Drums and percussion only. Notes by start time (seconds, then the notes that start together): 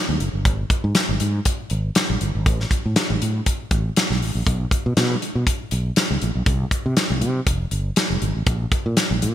0.20 closed hi-hat
0.45 kick, closed hi-hat
0.70 kick, closed hi-hat
0.95 snare, closed hi-hat
1.20 closed hi-hat
1.45 kick, closed hi-hat
1.70 closed hi-hat
1.95 snare, closed hi-hat
2.21 closed hi-hat
2.46 kick, closed hi-hat
2.60 snare
2.71 kick, closed hi-hat
2.96 snare, closed hi-hat
3.22 closed hi-hat
3.46 kick, closed hi-hat
3.71 kick, closed hi-hat
3.97 snare, closed hi-hat
4.11 snare
4.22 open hi-hat
4.47 kick, closed hi-hat
4.71 kick, closed hi-hat
4.97 snare, closed hi-hat
5.22 closed hi-hat
5.47 kick, closed hi-hat
5.71 closed hi-hat
5.96 snare, closed hi-hat
6.22 closed hi-hat
6.46 kick, closed hi-hat
6.71 kick, closed hi-hat
6.97 snare, closed hi-hat
7.22 closed hi-hat
7.47 kick, closed hi-hat
7.71 closed hi-hat
7.96 snare, closed hi-hat
8.22 closed hi-hat
8.47 kick, closed hi-hat
8.72 kick, closed hi-hat
8.97 snare, closed hi-hat
9.22 closed hi-hat